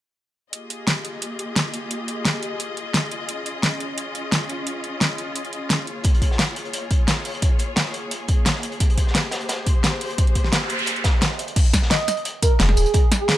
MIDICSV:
0, 0, Header, 1, 6, 480
1, 0, Start_track
1, 0, Key_signature, -4, "minor"
1, 0, Tempo, 344828
1, 736, Time_signature, 4, 2, 24, 8
1, 18621, End_track
2, 0, Start_track
2, 0, Title_t, "Digital synth lead"
2, 0, Program_c, 0, 84
2, 16572, Note_on_c, 0, 75, 97
2, 16864, Note_off_c, 0, 75, 0
2, 17296, Note_on_c, 0, 70, 90
2, 17513, Note_off_c, 0, 70, 0
2, 17536, Note_on_c, 0, 68, 96
2, 18210, Note_off_c, 0, 68, 0
2, 18383, Note_on_c, 0, 68, 92
2, 18474, Note_off_c, 0, 68, 0
2, 18494, Note_on_c, 0, 68, 98
2, 18621, Note_off_c, 0, 68, 0
2, 18621, End_track
3, 0, Start_track
3, 0, Title_t, "String section"
3, 0, Program_c, 1, 48
3, 735, Note_on_c, 1, 58, 74
3, 735, Note_on_c, 1, 75, 81
3, 736, Note_on_c, 1, 68, 67
3, 737, Note_on_c, 1, 67, 69
3, 738, Note_on_c, 1, 65, 70
3, 4537, Note_off_c, 1, 58, 0
3, 4538, Note_off_c, 1, 67, 0
3, 4578, Note_on_c, 1, 61, 76
3, 8120, Note_off_c, 1, 68, 0
3, 8120, Note_off_c, 1, 75, 0
3, 8141, Note_off_c, 1, 61, 0
3, 8177, Note_on_c, 1, 68, 69
3, 8179, Note_on_c, 1, 58, 72
3, 8179, Note_on_c, 1, 73, 83
3, 12201, Note_off_c, 1, 65, 0
3, 12216, Note_off_c, 1, 73, 0
3, 12255, Note_on_c, 1, 67, 72
3, 12256, Note_on_c, 1, 72, 84
3, 16041, Note_off_c, 1, 68, 0
3, 16042, Note_off_c, 1, 58, 0
3, 16057, Note_off_c, 1, 67, 0
3, 16057, Note_off_c, 1, 72, 0
3, 18621, End_track
4, 0, Start_track
4, 0, Title_t, "Sub bass"
4, 0, Program_c, 2, 38
4, 17533, Note_on_c, 2, 29, 101
4, 17752, Note_off_c, 2, 29, 0
4, 17771, Note_on_c, 2, 27, 100
4, 17887, Note_off_c, 2, 27, 0
4, 18621, End_track
5, 0, Start_track
5, 0, Title_t, "Noise sweep"
5, 0, Program_c, 3, 103
5, 14173, Note_on_c, 3, 60, 78
5, 16094, Note_off_c, 3, 60, 0
5, 18621, End_track
6, 0, Start_track
6, 0, Title_t, "Drums"
6, 737, Note_on_c, 9, 42, 93
6, 876, Note_off_c, 9, 42, 0
6, 977, Note_on_c, 9, 42, 66
6, 1116, Note_off_c, 9, 42, 0
6, 1218, Note_on_c, 9, 38, 116
6, 1218, Note_on_c, 9, 42, 93
6, 1357, Note_off_c, 9, 38, 0
6, 1357, Note_off_c, 9, 42, 0
6, 1457, Note_on_c, 9, 42, 66
6, 1596, Note_off_c, 9, 42, 0
6, 1698, Note_on_c, 9, 42, 90
6, 1837, Note_off_c, 9, 42, 0
6, 1936, Note_on_c, 9, 42, 65
6, 2076, Note_off_c, 9, 42, 0
6, 2176, Note_on_c, 9, 38, 112
6, 2176, Note_on_c, 9, 42, 93
6, 2315, Note_off_c, 9, 38, 0
6, 2315, Note_off_c, 9, 42, 0
6, 2416, Note_on_c, 9, 42, 64
6, 2555, Note_off_c, 9, 42, 0
6, 2656, Note_on_c, 9, 42, 86
6, 2795, Note_off_c, 9, 42, 0
6, 2896, Note_on_c, 9, 42, 66
6, 3035, Note_off_c, 9, 42, 0
6, 3137, Note_on_c, 9, 38, 115
6, 3137, Note_on_c, 9, 42, 87
6, 3276, Note_off_c, 9, 38, 0
6, 3276, Note_off_c, 9, 42, 0
6, 3377, Note_on_c, 9, 42, 61
6, 3516, Note_off_c, 9, 42, 0
6, 3617, Note_on_c, 9, 42, 89
6, 3756, Note_off_c, 9, 42, 0
6, 3858, Note_on_c, 9, 42, 63
6, 3997, Note_off_c, 9, 42, 0
6, 4095, Note_on_c, 9, 38, 117
6, 4095, Note_on_c, 9, 42, 91
6, 4235, Note_off_c, 9, 38, 0
6, 4235, Note_off_c, 9, 42, 0
6, 4336, Note_on_c, 9, 42, 62
6, 4475, Note_off_c, 9, 42, 0
6, 4575, Note_on_c, 9, 42, 85
6, 4714, Note_off_c, 9, 42, 0
6, 4816, Note_on_c, 9, 42, 64
6, 4955, Note_off_c, 9, 42, 0
6, 5056, Note_on_c, 9, 38, 118
6, 5056, Note_on_c, 9, 42, 84
6, 5195, Note_off_c, 9, 38, 0
6, 5195, Note_off_c, 9, 42, 0
6, 5296, Note_on_c, 9, 42, 61
6, 5435, Note_off_c, 9, 42, 0
6, 5535, Note_on_c, 9, 42, 89
6, 5674, Note_off_c, 9, 42, 0
6, 5776, Note_on_c, 9, 42, 60
6, 5916, Note_off_c, 9, 42, 0
6, 6016, Note_on_c, 9, 38, 122
6, 6016, Note_on_c, 9, 42, 85
6, 6155, Note_off_c, 9, 38, 0
6, 6155, Note_off_c, 9, 42, 0
6, 6257, Note_on_c, 9, 42, 61
6, 6396, Note_off_c, 9, 42, 0
6, 6496, Note_on_c, 9, 42, 81
6, 6636, Note_off_c, 9, 42, 0
6, 6735, Note_on_c, 9, 42, 59
6, 6875, Note_off_c, 9, 42, 0
6, 6976, Note_on_c, 9, 38, 116
6, 6976, Note_on_c, 9, 42, 86
6, 7115, Note_off_c, 9, 38, 0
6, 7115, Note_off_c, 9, 42, 0
6, 7216, Note_on_c, 9, 42, 57
6, 7355, Note_off_c, 9, 42, 0
6, 7455, Note_on_c, 9, 42, 86
6, 7582, Note_off_c, 9, 42, 0
6, 7582, Note_on_c, 9, 42, 34
6, 7695, Note_off_c, 9, 42, 0
6, 7695, Note_on_c, 9, 42, 60
6, 7834, Note_off_c, 9, 42, 0
6, 7936, Note_on_c, 9, 38, 117
6, 7936, Note_on_c, 9, 42, 88
6, 8075, Note_off_c, 9, 38, 0
6, 8075, Note_off_c, 9, 42, 0
6, 8176, Note_on_c, 9, 42, 60
6, 8315, Note_off_c, 9, 42, 0
6, 8403, Note_on_c, 9, 42, 77
6, 8415, Note_on_c, 9, 36, 114
6, 8416, Note_off_c, 9, 42, 0
6, 8416, Note_on_c, 9, 42, 87
6, 8554, Note_off_c, 9, 36, 0
6, 8554, Note_off_c, 9, 42, 0
6, 8554, Note_on_c, 9, 42, 41
6, 8655, Note_on_c, 9, 36, 59
6, 8656, Note_off_c, 9, 42, 0
6, 8656, Note_on_c, 9, 42, 62
6, 8661, Note_off_c, 9, 42, 0
6, 8661, Note_on_c, 9, 42, 65
6, 8786, Note_on_c, 9, 38, 39
6, 8794, Note_off_c, 9, 36, 0
6, 8800, Note_off_c, 9, 42, 0
6, 8895, Note_off_c, 9, 38, 0
6, 8895, Note_on_c, 9, 38, 116
6, 8895, Note_on_c, 9, 42, 85
6, 8897, Note_off_c, 9, 42, 0
6, 8897, Note_on_c, 9, 42, 80
6, 8901, Note_off_c, 9, 38, 0
6, 8901, Note_on_c, 9, 38, 119
6, 9037, Note_off_c, 9, 42, 0
6, 9040, Note_off_c, 9, 38, 0
6, 9136, Note_on_c, 9, 42, 58
6, 9140, Note_off_c, 9, 42, 0
6, 9140, Note_on_c, 9, 42, 63
6, 9259, Note_off_c, 9, 42, 0
6, 9259, Note_on_c, 9, 42, 39
6, 9374, Note_off_c, 9, 42, 0
6, 9374, Note_on_c, 9, 42, 84
6, 9381, Note_off_c, 9, 42, 0
6, 9381, Note_on_c, 9, 42, 86
6, 9520, Note_off_c, 9, 42, 0
6, 9614, Note_on_c, 9, 36, 103
6, 9614, Note_on_c, 9, 42, 61
6, 9618, Note_off_c, 9, 42, 0
6, 9618, Note_on_c, 9, 42, 63
6, 9753, Note_off_c, 9, 36, 0
6, 9757, Note_off_c, 9, 42, 0
6, 9853, Note_on_c, 9, 38, 116
6, 9853, Note_on_c, 9, 42, 86
6, 9859, Note_off_c, 9, 38, 0
6, 9859, Note_on_c, 9, 38, 113
6, 9992, Note_off_c, 9, 42, 0
6, 9999, Note_off_c, 9, 38, 0
6, 10093, Note_on_c, 9, 42, 62
6, 10094, Note_on_c, 9, 46, 75
6, 10227, Note_off_c, 9, 42, 0
6, 10227, Note_on_c, 9, 42, 41
6, 10233, Note_off_c, 9, 46, 0
6, 10331, Note_off_c, 9, 42, 0
6, 10331, Note_on_c, 9, 42, 83
6, 10333, Note_off_c, 9, 42, 0
6, 10333, Note_on_c, 9, 42, 89
6, 10334, Note_on_c, 9, 36, 108
6, 10472, Note_off_c, 9, 42, 0
6, 10473, Note_off_c, 9, 36, 0
6, 10565, Note_on_c, 9, 42, 63
6, 10573, Note_off_c, 9, 42, 0
6, 10573, Note_on_c, 9, 42, 65
6, 10712, Note_off_c, 9, 42, 0
6, 10805, Note_on_c, 9, 38, 115
6, 10812, Note_off_c, 9, 38, 0
6, 10812, Note_on_c, 9, 38, 108
6, 10812, Note_on_c, 9, 42, 86
6, 10816, Note_off_c, 9, 42, 0
6, 10816, Note_on_c, 9, 42, 85
6, 10936, Note_off_c, 9, 38, 0
6, 10936, Note_on_c, 9, 38, 38
6, 10955, Note_off_c, 9, 42, 0
6, 11053, Note_on_c, 9, 42, 64
6, 11054, Note_off_c, 9, 42, 0
6, 11054, Note_on_c, 9, 42, 63
6, 11075, Note_off_c, 9, 38, 0
6, 11193, Note_off_c, 9, 42, 0
6, 11293, Note_on_c, 9, 42, 92
6, 11433, Note_off_c, 9, 42, 0
6, 11528, Note_on_c, 9, 42, 62
6, 11534, Note_off_c, 9, 42, 0
6, 11534, Note_on_c, 9, 36, 98
6, 11534, Note_on_c, 9, 42, 62
6, 11673, Note_off_c, 9, 36, 0
6, 11673, Note_off_c, 9, 42, 0
6, 11774, Note_on_c, 9, 38, 112
6, 11774, Note_on_c, 9, 42, 86
6, 11776, Note_off_c, 9, 38, 0
6, 11776, Note_on_c, 9, 38, 119
6, 11894, Note_off_c, 9, 38, 0
6, 11894, Note_on_c, 9, 38, 43
6, 11914, Note_off_c, 9, 42, 0
6, 12014, Note_on_c, 9, 42, 67
6, 12015, Note_off_c, 9, 42, 0
6, 12015, Note_on_c, 9, 42, 64
6, 12033, Note_off_c, 9, 38, 0
6, 12135, Note_off_c, 9, 42, 0
6, 12135, Note_on_c, 9, 42, 43
6, 12253, Note_off_c, 9, 42, 0
6, 12253, Note_on_c, 9, 42, 88
6, 12254, Note_off_c, 9, 42, 0
6, 12254, Note_on_c, 9, 42, 90
6, 12255, Note_on_c, 9, 36, 105
6, 12386, Note_off_c, 9, 42, 0
6, 12386, Note_on_c, 9, 42, 45
6, 12394, Note_off_c, 9, 36, 0
6, 12494, Note_off_c, 9, 42, 0
6, 12494, Note_on_c, 9, 42, 66
6, 12495, Note_on_c, 9, 36, 59
6, 12501, Note_off_c, 9, 42, 0
6, 12501, Note_on_c, 9, 42, 70
6, 12628, Note_on_c, 9, 38, 41
6, 12634, Note_off_c, 9, 36, 0
6, 12640, Note_off_c, 9, 42, 0
6, 12730, Note_on_c, 9, 42, 80
6, 12734, Note_off_c, 9, 38, 0
6, 12734, Note_off_c, 9, 42, 0
6, 12734, Note_on_c, 9, 38, 106
6, 12734, Note_on_c, 9, 42, 93
6, 12737, Note_off_c, 9, 38, 0
6, 12737, Note_on_c, 9, 38, 108
6, 12873, Note_off_c, 9, 42, 0
6, 12876, Note_off_c, 9, 38, 0
6, 12965, Note_on_c, 9, 38, 102
6, 12966, Note_on_c, 9, 42, 82
6, 12975, Note_off_c, 9, 42, 0
6, 12975, Note_on_c, 9, 42, 64
6, 13096, Note_off_c, 9, 42, 0
6, 13096, Note_on_c, 9, 42, 41
6, 13104, Note_off_c, 9, 38, 0
6, 13205, Note_off_c, 9, 42, 0
6, 13205, Note_on_c, 9, 42, 77
6, 13212, Note_on_c, 9, 38, 99
6, 13214, Note_off_c, 9, 42, 0
6, 13214, Note_on_c, 9, 42, 92
6, 13351, Note_off_c, 9, 38, 0
6, 13353, Note_off_c, 9, 42, 0
6, 13453, Note_on_c, 9, 42, 65
6, 13454, Note_on_c, 9, 36, 96
6, 13460, Note_off_c, 9, 42, 0
6, 13460, Note_on_c, 9, 42, 62
6, 13594, Note_off_c, 9, 36, 0
6, 13600, Note_off_c, 9, 42, 0
6, 13691, Note_on_c, 9, 42, 88
6, 13695, Note_off_c, 9, 42, 0
6, 13695, Note_on_c, 9, 38, 112
6, 13695, Note_on_c, 9, 42, 93
6, 13703, Note_off_c, 9, 38, 0
6, 13703, Note_on_c, 9, 38, 103
6, 13834, Note_off_c, 9, 42, 0
6, 13842, Note_off_c, 9, 38, 0
6, 13935, Note_on_c, 9, 42, 67
6, 13939, Note_on_c, 9, 46, 74
6, 14067, Note_off_c, 9, 42, 0
6, 14067, Note_on_c, 9, 42, 44
6, 14079, Note_off_c, 9, 46, 0
6, 14174, Note_off_c, 9, 42, 0
6, 14174, Note_on_c, 9, 36, 108
6, 14174, Note_on_c, 9, 42, 91
6, 14176, Note_off_c, 9, 42, 0
6, 14176, Note_on_c, 9, 42, 76
6, 14300, Note_off_c, 9, 42, 0
6, 14300, Note_on_c, 9, 42, 38
6, 14313, Note_off_c, 9, 36, 0
6, 14413, Note_off_c, 9, 42, 0
6, 14413, Note_on_c, 9, 42, 64
6, 14414, Note_on_c, 9, 36, 56
6, 14539, Note_on_c, 9, 38, 35
6, 14553, Note_off_c, 9, 36, 0
6, 14553, Note_off_c, 9, 42, 0
6, 14650, Note_off_c, 9, 38, 0
6, 14650, Note_on_c, 9, 38, 120
6, 14652, Note_off_c, 9, 38, 0
6, 14652, Note_on_c, 9, 38, 110
6, 14652, Note_on_c, 9, 42, 97
6, 14666, Note_off_c, 9, 42, 0
6, 14666, Note_on_c, 9, 42, 80
6, 14780, Note_off_c, 9, 38, 0
6, 14780, Note_on_c, 9, 38, 38
6, 14805, Note_off_c, 9, 42, 0
6, 14884, Note_on_c, 9, 42, 68
6, 14892, Note_off_c, 9, 42, 0
6, 14892, Note_on_c, 9, 42, 66
6, 14919, Note_off_c, 9, 38, 0
6, 15020, Note_off_c, 9, 42, 0
6, 15020, Note_on_c, 9, 42, 37
6, 15120, Note_off_c, 9, 42, 0
6, 15120, Note_on_c, 9, 42, 91
6, 15134, Note_off_c, 9, 42, 0
6, 15134, Note_on_c, 9, 42, 96
6, 15260, Note_off_c, 9, 42, 0
6, 15260, Note_on_c, 9, 42, 38
6, 15367, Note_off_c, 9, 42, 0
6, 15367, Note_on_c, 9, 42, 72
6, 15370, Note_on_c, 9, 38, 105
6, 15374, Note_on_c, 9, 36, 95
6, 15376, Note_off_c, 9, 42, 0
6, 15376, Note_on_c, 9, 42, 66
6, 15509, Note_off_c, 9, 38, 0
6, 15514, Note_off_c, 9, 36, 0
6, 15515, Note_off_c, 9, 42, 0
6, 15612, Note_on_c, 9, 42, 80
6, 15616, Note_off_c, 9, 42, 0
6, 15616, Note_on_c, 9, 38, 110
6, 15616, Note_on_c, 9, 42, 97
6, 15617, Note_off_c, 9, 38, 0
6, 15617, Note_on_c, 9, 38, 117
6, 15744, Note_off_c, 9, 38, 0
6, 15744, Note_on_c, 9, 38, 39
6, 15755, Note_off_c, 9, 42, 0
6, 15856, Note_on_c, 9, 42, 66
6, 15862, Note_off_c, 9, 42, 0
6, 15862, Note_on_c, 9, 42, 68
6, 15883, Note_off_c, 9, 38, 0
6, 15974, Note_off_c, 9, 42, 0
6, 15974, Note_on_c, 9, 42, 46
6, 15981, Note_off_c, 9, 42, 0
6, 15981, Note_on_c, 9, 42, 37
6, 16095, Note_off_c, 9, 42, 0
6, 16095, Note_on_c, 9, 42, 82
6, 16095, Note_on_c, 9, 49, 104
6, 16096, Note_off_c, 9, 42, 0
6, 16096, Note_on_c, 9, 36, 120
6, 16096, Note_on_c, 9, 42, 80
6, 16219, Note_off_c, 9, 42, 0
6, 16219, Note_on_c, 9, 42, 41
6, 16234, Note_off_c, 9, 49, 0
6, 16235, Note_off_c, 9, 36, 0
6, 16336, Note_off_c, 9, 42, 0
6, 16336, Note_on_c, 9, 36, 63
6, 16336, Note_on_c, 9, 40, 58
6, 16336, Note_on_c, 9, 42, 100
6, 16336, Note_on_c, 9, 54, 62
6, 16348, Note_off_c, 9, 42, 0
6, 16348, Note_on_c, 9, 42, 70
6, 16458, Note_on_c, 9, 38, 42
6, 16475, Note_off_c, 9, 36, 0
6, 16475, Note_off_c, 9, 40, 0
6, 16475, Note_off_c, 9, 54, 0
6, 16488, Note_off_c, 9, 42, 0
6, 16570, Note_off_c, 9, 38, 0
6, 16570, Note_on_c, 9, 38, 123
6, 16576, Note_off_c, 9, 38, 0
6, 16576, Note_on_c, 9, 38, 116
6, 16576, Note_on_c, 9, 42, 86
6, 16716, Note_off_c, 9, 38, 0
6, 16716, Note_off_c, 9, 42, 0
6, 16811, Note_on_c, 9, 42, 64
6, 16816, Note_off_c, 9, 42, 0
6, 16816, Note_on_c, 9, 40, 34
6, 16816, Note_on_c, 9, 42, 98
6, 16816, Note_on_c, 9, 54, 58
6, 16940, Note_off_c, 9, 42, 0
6, 16940, Note_on_c, 9, 42, 47
6, 16955, Note_off_c, 9, 40, 0
6, 16955, Note_off_c, 9, 54, 0
6, 17056, Note_off_c, 9, 42, 0
6, 17056, Note_on_c, 9, 42, 83
6, 17058, Note_off_c, 9, 42, 0
6, 17058, Note_on_c, 9, 42, 94
6, 17197, Note_off_c, 9, 42, 0
6, 17296, Note_on_c, 9, 36, 103
6, 17296, Note_on_c, 9, 42, 67
6, 17296, Note_on_c, 9, 54, 59
6, 17435, Note_off_c, 9, 36, 0
6, 17435, Note_off_c, 9, 54, 0
6, 17436, Note_off_c, 9, 42, 0
6, 17536, Note_on_c, 9, 38, 123
6, 17536, Note_on_c, 9, 42, 86
6, 17540, Note_off_c, 9, 38, 0
6, 17540, Note_on_c, 9, 38, 120
6, 17546, Note_off_c, 9, 42, 0
6, 17546, Note_on_c, 9, 42, 89
6, 17662, Note_on_c, 9, 40, 37
6, 17679, Note_off_c, 9, 38, 0
6, 17685, Note_off_c, 9, 42, 0
6, 17770, Note_on_c, 9, 46, 82
6, 17777, Note_off_c, 9, 46, 0
6, 17777, Note_on_c, 9, 46, 76
6, 17777, Note_on_c, 9, 54, 61
6, 17801, Note_off_c, 9, 40, 0
6, 17902, Note_off_c, 9, 54, 0
6, 17902, Note_on_c, 9, 54, 29
6, 17905, Note_on_c, 9, 42, 42
6, 17916, Note_off_c, 9, 46, 0
6, 18008, Note_off_c, 9, 42, 0
6, 18008, Note_on_c, 9, 42, 88
6, 18016, Note_off_c, 9, 42, 0
6, 18016, Note_on_c, 9, 36, 123
6, 18016, Note_on_c, 9, 42, 80
6, 18041, Note_off_c, 9, 54, 0
6, 18155, Note_off_c, 9, 36, 0
6, 18155, Note_off_c, 9, 42, 0
6, 18257, Note_on_c, 9, 42, 71
6, 18258, Note_off_c, 9, 42, 0
6, 18258, Note_on_c, 9, 40, 62
6, 18258, Note_on_c, 9, 42, 100
6, 18258, Note_on_c, 9, 54, 58
6, 18397, Note_off_c, 9, 40, 0
6, 18397, Note_off_c, 9, 42, 0
6, 18397, Note_off_c, 9, 54, 0
6, 18492, Note_on_c, 9, 38, 117
6, 18497, Note_off_c, 9, 38, 0
6, 18497, Note_on_c, 9, 38, 127
6, 18497, Note_on_c, 9, 42, 81
6, 18501, Note_off_c, 9, 42, 0
6, 18501, Note_on_c, 9, 42, 87
6, 18621, Note_off_c, 9, 38, 0
6, 18621, Note_off_c, 9, 42, 0
6, 18621, End_track
0, 0, End_of_file